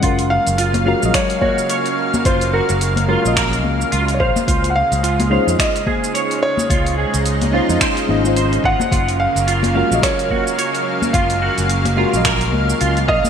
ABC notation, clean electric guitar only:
X:1
M:4/4
L:1/16
Q:"Swing 16ths" 1/4=108
K:Gblyd
V:1 name="Clean electric guitar"
F2 z2 F2 f2 z2 G2 d2 z2 | F2 G2 z2 F2 B z3 F z f z | F2 z2 F2 f2 z2 A2 d2 z2 | F2 A2 z2 F2 c z3 c2 F z |
F2 z2 F2 f2 z2 G2 d2 z2 | F2 G2 z2 F2 B2 z2 F2 f2 |]